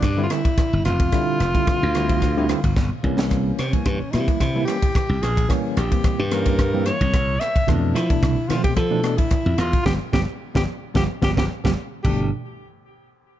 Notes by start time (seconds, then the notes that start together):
Already playing: D4
0.02 G2, kick, cross-stick, ride
0.17 D3 G3 C4 E4
0.23 F4
0.30 D3 G3 C4 D4 E4, cross-stick, ride
0.45 E4, kick, ride
0.57 muted slap bass stroke, kick, cross-stick, ride
0.73 G1
0.85 F1 F4, cross-stick, ride
1.00 kick, ride
1.12 D3 G3 C4 E4, kick, cross-stick, ride
1.40 F1, cross-stick, ride
1.54 D3 G3 C4 E4, kick, ride
1.67 muted slap bass stroke, kick, cross-stick, ride
1.83 D2
1.95 D3 G3 C4 E4, cross-stick, ride
2.09 kick, ride
2.22 kick, cross-stick, ride
2.37 D3 G3 C4 E4
2.49 D3 G3 C4 E4, cross-stick, ride
2.64 G1 F4, kick, ride
2.76 G1, kick, snare
3.03 C2 E3 G3 A#3 C#4, kick
3.19 snare
3.31 kick, cross-stick, ride
3.58 C3 C#4, cross-stick, ride
3.73 E3 G3 A#3 C#4, kick, ride
3.85 G2, kick, cross-stick, ride
4.02 muted slap bass stroke
4.11 C3 E3 G3 A#3 E4, cross-stick, ride
4.28 muted slap bass stroke, kick, ride
4.40 C3, kick, cross-stick, ride
4.55 E3 G3 A#3 E4
4.65 E3 G3 A#3 C#4 G4, cross-stick, ride
4.83 E4, kick, ride
4.95 muted slap bass stroke, kick, cross-stick, ride
5.09 C2
5.22 A#1 G#4, cross-stick, ride
5.37 kick, ride
5.48 E3 G3 A#3 C#4, kick, cross-stick, ride
5.77 A#1 G4, cross-stick, ride
5.91 E3 G3 A#3 C4, kick, ride
6.04 muted slap bass stroke, kick, cross-stick, ride
6.19 G2
6.31 E3 G3 A#3 C#4 A#4, cross-stick, ride
6.46 kick, ride
6.59 kick, cross-stick, ride
6.73 E3 G3 A#3 C4
6.86 E3 G3 A#3 E4 C#5, cross-stick, ride
7.01 C2 C#4, kick, ride
7.13 C2, kick, cross-stick, ride
7.40 E5, cross-stick, ride
7.56 muted slap bass stroke, kick, ride
7.67 F2 B2 E3 A3 D4, kick, cross-stick, ride
7.94 F3 E4, cross-stick, ride
8.10 B2 E3 A3 D4, kick, ride
8.23 C2, kick, cross-stick, ride
8.37 muted slap bass stroke
8.49 B2 E3 F3 A3 C4 F4, cross-stick, ride
8.63 G4, muted slap bass stroke, kick, ride
8.76 F3 A4, kick, cross-stick, ride
8.90 B2 E3 A3 D4
9.03 B2 E3 A3 D4, cross-stick, ride
9.17 A3 C4 E4, kick, ride
9.30 muted slap bass stroke, kick, cross-stick, ride
9.46 F2
9.58 E2 F4, cross-stick, ride
9.73 kick, ride
9.86 G1 F3 G3 B3 G4, kick, snare
10.13 G1 F3 G3 B3 G4, kick, snare
10.55 G1 F3 G3 B3 G4, kick, snare
10.94 G1 F3 G3 B3 G4, kick, snare
11.22 G1 F3 G3 B3 G4, kick, snare
11.37 G1 F3 G3 B3 G4, kick, snare
11.64 G1 F3 G3 B3 G4, kick, snare
12.04 G1 B2 E3 A3 D4 G4, kick, crash